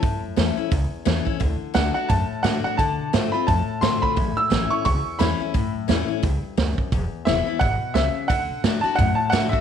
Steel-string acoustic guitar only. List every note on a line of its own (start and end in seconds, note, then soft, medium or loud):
0.02 0.69 A2 medium
0.36 0.56 E3 medium
0.36 0.57 A3 medium
0.36 0.57 C#4 medium
0.36 0.56 E4 loud
0.57 0.72 C#4 medium
0.57 0.71 E4 medium
0.72 1.38 E2 medium
1.05 1.25 E3 loud
1.05 1.25 A3 loud
1.05 1.26 C#4 loud
1.05 1.24 E4 loud
1.25 1.41 C#4 medium
1.25 1.40 E4 medium
1.40 1.72 D3 medium
1.74 1.94 D3 medium
1.74 1.95 A3 medium
1.74 1.95 D4 medium
1.74 1.93 F#4 medium
1.94 2.10 D4 medium
1.94 2.09 F#4 medium
2.10 2.76 A2 loud
2.44 2.64 D3 medium
2.44 2.64 A3 medium
2.44 2.64 D4 medium
2.44 2.63 F#4 loud
2.64 2.79 D4 medium
2.64 2.78 F#4 medium
2.79 3.12 D3 medium
3.13 3.33 D3 medium
3.13 3.33 A3 medium
3.13 3.33 C4 medium
3.13 3.33 F4 medium
3.34 3.48 C4 medium
3.34 3.47 F4 medium
3.48 4.14 A2 medium
3.82 4.15 D3 medium
3.82 4.16 A3 loud
3.82 4.16 C4 loud
3.82 4.16 F4 loud
4.16 4.83 A2 medium
4.50 4.70 E3 medium
4.50 4.70 A3 medium
4.50 4.70 C#4 loud
4.50 4.69 E4 medium
4.70 4.85 C#4 medium
4.70 4.85 E4 medium
4.85 5.51 E2 loud
5.19 5.39 E3 medium
5.19 5.39 A3 loud
5.19 5.40 C#4 loud
5.19 5.39 E4 loud
5.40 5.55 C#4 medium
5.40 5.54 E4 medium
5.54 6.20 A2 medium
5.88 6.08 E3 medium
5.88 6.08 A3 medium
5.88 6.08 C#4 loud
5.88 6.07 E4 loud
6.08 6.23 C#4 soft
6.08 6.22 E4 medium
6.23 6.56 G2 medium
6.57 6.91 F#2 loud
6.93 7.58 E2 medium
7.27 7.46 E3 medium
7.27 7.46 G#3 medium
7.27 7.47 B3 medium
7.27 7.45 E4 medium
7.47 7.61 B3 medium
7.47 7.60 E4 medium
7.61 7.94 B2 medium
7.95 8.28 C#3 medium
8.30 8.63 D3 loud
8.64 8.83 D3 medium
8.64 8.84 A3 loud
8.64 8.84 D4 loud
8.64 8.83 F#4 loud
8.84 8.99 D4 medium
8.84 8.98 F#4 medium
8.99 9.61 A2 medium
9.32 9.52 D3 loud
9.32 9.52 A3 loud
9.32 9.52 D4 loud
9.32 9.51 F#4 loud
9.52 9.61 D4 medium
9.52 9.61 F#4 medium